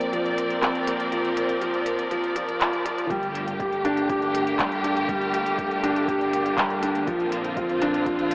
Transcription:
0.00 0.13 F3 medium
0.00 3.07 F3 medium
0.00 0.11 A#3 medium
0.00 0.62 C4 medium
0.00 3.07 C4 medium
0.00 3.07 A#4 medium
0.00 3.07 D5 medium
0.00 closed hi-hat soft
0.13 0.36 F3 medium
0.13 closed hi-hat soft
0.26 closed hi-hat soft
0.38 closed hi-hat medium
0.50 closed hi-hat soft
0.62 0.86 C4 medium
0.62 clap medium
0.62 closed hi-hat soft
0.75 closed hi-hat soft
0.87 1.10 A#3 medium
0.87 closed hi-hat medium
1.00 closed hi-hat soft
1.12 1.36 F3 medium
1.12 closed hi-hat soft
1.25 closed hi-hat soft
1.37 closed hi-hat medium
1.49 closed hi-hat soft
1.61 1.85 F3 medium
1.61 closed hi-hat soft
1.74 closed hi-hat soft
1.86 closed hi-hat medium
1.99 closed hi-hat soft
2.11 2.34 F3 medium
2.11 closed hi-hat soft
2.24 closed hi-hat soft
2.36 2.59 F3 medium
2.36 closed hi-hat medium
2.49 closed hi-hat soft
2.61 2.84 F3 medium
2.61 clap medium
2.61 closed hi-hat soft
2.73 closed hi-hat soft
2.85 3.08 F3 medium
2.85 closed hi-hat medium
2.98 closed hi-hat soft
3.10 7.05 G1 medium
3.10 8.35 D3 medium
3.10 3.25 G3 medium
3.10 7.03 A3 medium
3.10 8.35 A#3 medium
3.10 7.03 G4 medium
3.10 kick loud
3.10 closed hi-hat soft
3.23 closed hi-hat soft
3.35 closed hi-hat medium
3.48 closed hi-hat soft
3.60 3.84 G4 medium
3.60 kick loud
3.60 closed hi-hat soft
3.73 closed hi-hat soft
3.85 4.08 D4 medium
3.85 closed hi-hat medium
3.97 closed hi-hat soft
4.09 4.33 G4 medium
4.09 kick loud
4.09 closed hi-hat soft
4.22 closed hi-hat soft
4.35 closed hi-hat medium
4.47 closed hi-hat soft
4.59 4.83 G3 medium
4.59 kick loud
4.59 clap medium
4.59 closed hi-hat soft
4.72 closed hi-hat soft
4.84 5.08 D4 medium
4.84 closed hi-hat medium
4.97 closed hi-hat soft
5.09 5.23 G3 loud
5.09 kick loud
5.09 closed hi-hat soft
5.22 closed hi-hat soft
5.34 closed hi-hat medium
5.46 closed hi-hat soft
5.58 5.82 G4 medium
5.58 kick loud
5.58 closed hi-hat soft
5.71 closed hi-hat soft
5.83 6.07 D4 medium
5.83 closed hi-hat medium
5.96 closed hi-hat soft
6.08 6.32 G4 medium
6.08 kick loud
6.08 closed hi-hat soft
6.21 closed hi-hat soft
6.33 closed hi-hat medium
6.46 closed hi-hat soft
6.58 6.81 G3 medium
6.58 kick medium
6.58 clap medium
6.58 closed hi-hat soft
6.70 closed hi-hat soft
6.82 7.06 D4 medium
6.82 closed hi-hat medium
6.95 closed hi-hat soft
7.07 8.35 A#1 medium
7.07 7.21 F3 loud
7.07 8.35 C4 medium
7.07 8.35 F4 medium
7.07 kick loud
7.07 closed hi-hat soft
7.20 closed hi-hat soft
7.32 closed hi-hat medium
7.45 closed hi-hat soft
7.57 7.80 F4 medium
7.57 kick loud
7.57 closed hi-hat soft
7.69 closed hi-hat soft
7.82 8.05 D4 loud
7.82 closed hi-hat medium
7.94 closed hi-hat soft
8.06 8.30 F4 medium
8.06 kick loud
8.06 closed hi-hat soft
8.19 closed hi-hat soft
8.31 closed hi-hat medium

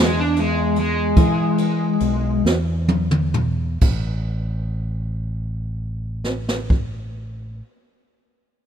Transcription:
0.00 1.13 E2 medium
0.00 0.18 G#3 medium
0.20 0.38 D4 medium
0.36 0.77 G#3 medium
0.36 ride medium
0.76 2.42 G#3 medium
0.76 ride medium
1.16 1.97 E3 medium
1.16 kick loud
1.16 ride medium
1.58 ride medium
2.00 2.41 B1 loud
2.00 ride medium
2.45 3.78 E2 loud
2.45 snare medium
2.88 high tom medium
3.11 mid tom medium
3.34 mid tom loud
3.81 7.61 A1 medium
3.81 kick medium
3.81 crash medium
6.24 snare medium
6.49 snare medium
6.70 kick medium

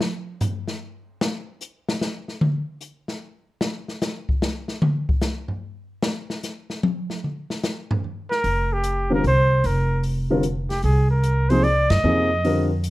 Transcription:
0.01 snare medium
0.41 floor tom loud
0.41 hi-hat pedal medium
0.68 snare medium
1.21 snare loud
1.61 hi-hat pedal medium
1.89 snare medium
2.01 snare medium
2.28 snare soft
2.41 mid tom loud
2.81 hi-hat pedal medium
3.08 snare medium
3.61 snare loud
3.88 snare soft
4.01 snare loud
4.01 hi-hat pedal medium
4.29 kick medium
4.42 snare loud
4.68 snare soft
4.82 mid tom loud
5.09 kick medium
5.21 snare medium
5.21 hi-hat pedal medium
5.48 floor tom medium
6.03 snare loud
6.30 snare medium
6.43 snare soft
6.43 hi-hat pedal medium
6.70 snare soft
6.83 high tom medium
7.10 snare soft
7.24 mid tom soft
7.50 snare medium
7.63 snare medium
7.63 hi-hat pedal medium
7.91 floor tom loud
8.04 floor tom soft
8.30 8.74 A#4 loud
8.30 snare soft
8.44 9.20 F1 medium
8.44 open hi-hat soft
8.73 9.11 G4 medium
8.84 closed hi-hat soft
9.10 9.22 D3 medium
9.10 9.22 G3 medium
9.10 9.22 C4 medium
9.10 9.22 F4 medium
9.10 9.22 A#4 medium
9.14 9.25 A#4 medium
9.24 9.61 C2 medium
9.24 9.68 C5 medium
9.24 open hi-hat soft
9.64 10.80 F1 medium
9.64 10.05 A#4 medium
9.64 open hi-hat soft
10.03 open hi-hat soft
10.30 10.42 D3 medium
10.30 10.42 G3 medium
10.30 10.42 C4 medium
10.30 10.43 F4 medium
10.30 10.43 A#4 medium
10.43 closed hi-hat soft
10.70 10.83 G4 medium
10.70 snare soft
10.70 open hi-hat soft
10.83 11.86 C2 medium
10.83 11.09 G#4 medium
10.83 open hi-hat soft
11.10 11.51 A#4 medium
11.24 closed hi-hat soft
11.50 11.62 C3 medium
11.50 11.63 F3 medium
11.50 11.63 A#3 soft
11.50 11.63 D#4 medium
11.50 11.63 G#4 medium
11.50 11.65 C5 medium
11.50 open hi-hat soft
11.64 11.92 D5 medium
11.64 open hi-hat soft
11.90 12.03 F#2 medium
11.90 12.71 D#5 loud
11.90 snare medium
11.90 ride medium
12.04 12.90 F2 medium
12.04 12.28 C3 medium
12.04 12.28 F3 medium
12.04 12.28 A#3 medium
12.04 12.28 D#4 medium
12.04 12.28 G#4 medium
12.44 12.68 D3 medium
12.44 12.68 G3 soft
12.44 12.68 C4 medium
12.44 12.69 F4 soft
12.44 12.69 A#4 medium
12.44 open hi-hat soft
12.84 closed hi-hat medium

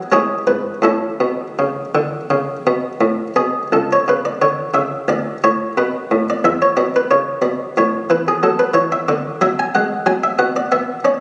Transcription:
0.12 0.38 G#3 medium
0.12 0.46 E4 medium
0.12 0.46 G#4 medium
0.12 0.43 C#5 medium
0.47 0.74 G#2 medium
0.47 0.84 B4 medium
0.82 1.09 A2 medium
0.82 3.33 C#4 medium
0.82 3.33 E4 medium
0.82 3.37 A4 medium
1.20 1.47 B2 medium
1.59 1.84 C#3 medium
1.95 2.20 D3 medium
2.30 2.56 C#3 medium
2.67 2.92 B2 medium
3.01 3.27 A2 medium
3.36 3.62 B2 medium
3.36 3.67 G#4 medium
3.72 4.06 C#2 medium
3.72 3.90 A4 medium
3.93 4.08 C#5 medium
4.08 4.43 C#3 soft
4.08 4.25 B4 medium
4.25 4.41 D5 medium
4.42 4.75 D3 soft
4.42 4.70 C#5 medium
4.74 5.08 C#3 soft
4.74 5.08 E5 medium
5.08 5.41 D2 soft
5.08 5.38 D5 medium
5.44 5.79 A2 soft
5.44 5.72 C#5 medium
5.78 6.11 B2 soft
5.78 6.28 B4 medium
6.11 6.44 A2 soft
6.30 6.45 D5 medium
6.44 6.76 E2 medium
6.44 6.61 E5 medium
6.62 6.78 C#5 medium
6.77 7.12 B2 soft
6.77 6.93 D5 medium
6.96 7.11 B4 medium
7.11 7.43 C#3 soft
7.11 7.43 C#5 medium
7.42 7.75 B2 soft
7.42 7.75 D5 medium
7.77 8.08 A2 medium
7.77 8.10 C#5 medium
8.10 8.44 E3 soft
8.10 8.26 B4 medium
8.28 8.43 G#4 medium
8.43 8.75 F#3 soft
8.43 8.59 A4 medium
8.59 8.75 B4 medium
8.74 9.07 E3 soft
8.74 8.91 C#5 medium
8.92 9.08 E5 medium
9.08 9.40 D3 medium
9.08 9.41 D5 medium
9.41 9.75 F#3 soft
9.41 9.58 E5 medium
9.59 9.75 G#5 medium
9.75 10.07 G#3 soft
9.75 10.07 F#5 medium
10.06 10.38 F#3 soft
10.06 10.22 G#5 medium
10.24 10.39 E5 medium
10.39 10.70 B2 medium
10.39 10.55 F#5 medium
10.56 10.72 D5 medium
10.72 11.06 B3 soft
10.72 11.00 E5 medium
11.05 11.20 C#4 soft
11.05 11.20 D5 medium

